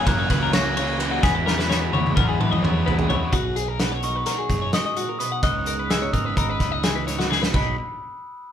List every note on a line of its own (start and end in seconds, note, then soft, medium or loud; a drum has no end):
0.06 0.76 F#2 loud
0.06 0.27 F#2 loud
0.06 0.51 C#3 loud
0.06 0.53 E3 loud
0.06 0.54 A#3 loud
0.06 0.55 C#4 loud
0.06 0.19 A#4 loud
0.06 0.55 F#6 loud
0.06 kick loud
0.06 snare soft
0.06 ride loud
0.19 0.30 C#5 medium
0.30 1.19 C#2 medium
0.30 0.42 B4 medium
0.30 kick medium
0.30 snare soft
0.30 ride medium
0.43 0.53 A#4 medium
0.53 0.99 C#3 medium
0.53 0.78 E3 medium
0.53 0.76 A#3 medium
0.53 0.75 C#4 medium
0.53 0.66 C#5 medium
0.53 0.97 A#6 loud
0.53 snare loud
0.53 ride loud
0.66 0.77 A#4 medium
0.76 0.99 E3 medium
0.76 1.00 A#3 medium
0.76 1.01 C#4 medium
0.76 1.00 C#5 medium
0.76 ride medium
0.99 1.21 F#2 medium
0.99 1.22 C#3 loud
0.99 1.21 E3 loud
0.99 1.22 A#3 loud
0.99 1.23 C#4 loud
0.99 1.11 B4 medium
0.99 ride medium
1.11 1.23 F#4 medium
1.22 1.89 E2 loud
1.22 1.67 E3 loud
1.22 1.47 G#3 loud
1.22 1.46 B3 loud
1.22 1.44 E4 loud
1.22 1.35 G#4 loud
1.22 2.83 B6 loud
1.22 kick loud
1.22 snare medium
1.35 1.46 B4 medium
1.45 1.68 G#3 medium
1.45 1.69 B3 medium
1.45 1.70 E4 medium
1.45 1.58 A#4 medium
1.45 snare medium
1.58 1.69 B4 medium
1.58 snare medium
1.68 2.14 E3 medium
1.68 1.94 G#3 medium
1.68 1.93 B3 medium
1.68 1.90 E4 medium
1.68 1.81 C#5 medium
1.68 snare medium
1.81 1.93 B4 medium
1.92 2.14 E2 loud
1.92 2.16 G#3 medium
1.92 2.17 B3 medium
1.92 2.17 E4 medium
1.92 2.16 C#5 medium
1.92 high tom medium
2.06 high tom medium
2.16 2.37 E2 loud
2.16 2.60 E3 loud
2.16 2.61 G#3 loud
2.16 2.62 B3 loud
2.16 2.63 E4 loud
2.16 2.28 A#4 medium
2.16 kick loud
2.16 mid tom medium
2.29 2.40 G#4 medium
2.40 2.61 E3 medium
2.40 2.51 B4 medium
2.40 mid tom medium
2.51 2.63 D#5 medium
2.51 mid tom medium
2.61 3.28 E2 loud
2.61 3.07 E3 medium
2.61 2.87 G#3 medium
2.61 2.86 B3 medium
2.61 2.84 E4 medium
2.61 2.86 C#5 medium
2.61 mid tom loud
2.85 3.08 G#3 medium
2.85 3.09 B3 medium
2.85 3.10 E4 medium
2.85 2.98 B4 medium
2.85 floor tom loud
2.98 3.10 G#4 medium
2.98 floor tom loud
3.08 3.31 E3 medium
3.08 3.31 G#3 loud
3.08 3.32 B3 loud
3.08 3.32 E4 loud
3.08 3.33 C#5 medium
3.08 floor tom loud
3.32 4.22 B1 medium
3.32 4.48 B2 medium
3.32 3.56 F#4 loud
3.32 4.50 G#4 medium
3.32 kick loud
3.32 closed hi-hat loud
3.56 3.68 G#4 medium
3.56 closed hi-hat medium
3.68 3.80 A#4 medium
3.79 4.26 F#4 medium
3.79 3.92 B4 medium
3.79 snare loud
3.79 closed hi-hat medium
3.92 4.03 C#5 medium
4.03 5.43 F#3 medium
4.03 5.44 D#4 medium
4.03 4.16 A#4 medium
4.03 4.76 C#6 medium
4.03 closed hi-hat medium
4.16 4.26 B4 medium
4.26 5.41 F#4 medium
4.26 4.38 A#4 medium
4.26 snare soft
4.26 closed hi-hat medium
4.38 4.62 G#4 medium
4.49 4.71 F#2 medium
4.49 4.73 B2 medium
4.49 5.46 G#4 medium
4.49 kick medium
4.49 closed hi-hat medium
4.62 4.73 C#5 medium
4.73 4.97 G#2 medium
4.73 4.85 D#5 medium
4.73 5.17 D#6 loud
4.73 snare loud
4.73 closed hi-hat loud
4.86 4.97 D#5 medium
4.97 5.20 A#2 medium
4.97 5.08 F#4 medium
4.97 closed hi-hat medium
5.09 5.20 A#4 medium
5.19 5.43 B2 medium
5.19 5.32 B4 medium
5.19 5.41 D#6 loud
5.19 closed hi-hat medium
5.32 5.43 F#5 medium
5.43 6.09 C#2 medium
5.43 6.83 C#3 medium
5.43 6.12 G#3 medium
5.43 6.13 B3 medium
5.43 5.89 D#4 medium
5.43 6.60 B4 medium
5.43 5.67 D#5 loud
5.43 5.87 F#6 loud
5.43 kick loud
5.43 closed hi-hat medium
5.66 5.79 A#4 medium
5.66 closed hi-hat medium
5.79 5.91 B4 medium
5.90 6.36 D#4 medium
5.90 6.02 G#4 medium
5.90 6.14 E6 medium
5.90 snare loud
5.90 closed hi-hat loud
6.02 6.13 C#5 medium
6.13 6.34 G#1 medium
6.13 7.51 G#3 medium
6.13 7.55 B3 medium
6.13 6.25 A#4 medium
6.13 6.37 D#6 medium
6.13 kick medium
6.13 closed hi-hat medium
6.25 6.37 B4 medium
6.37 6.58 G#1 medium
6.37 7.54 D#4 medium
6.37 6.49 A#4 medium
6.37 7.27 B5 medium
6.37 kick loud
6.37 closed hi-hat medium
6.49 6.72 B4 medium
6.60 7.50 C#2 loud
6.60 7.53 G#2 medium
6.60 7.52 B4 medium
6.60 kick medium
6.60 snare soft
6.60 closed hi-hat medium
6.72 6.84 D#5 medium
6.84 7.07 E3 medium
6.84 6.96 G#4 medium
6.84 snare loud
6.84 closed hi-hat loud
6.95 7.07 B4 medium
7.07 7.29 D#3 medium
7.07 7.19 C#5 medium
7.07 snare soft
7.07 closed hi-hat medium
7.19 7.30 F#4 medium
7.19 snare medium
7.29 7.53 C#3 medium
7.29 7.42 G#4 medium
7.29 snare medium
7.42 7.53 B4 medium
7.42 snare loud
7.54 7.76 B1 medium
7.54 7.75 B2 medium
7.54 7.75 F#3 medium
7.54 7.75 D#4 medium
7.54 7.76 F#4 medium
7.54 7.76 G#4 medium
7.54 7.76 B4 medium
7.54 7.77 B5 medium
7.54 kick loud
7.54 crash medium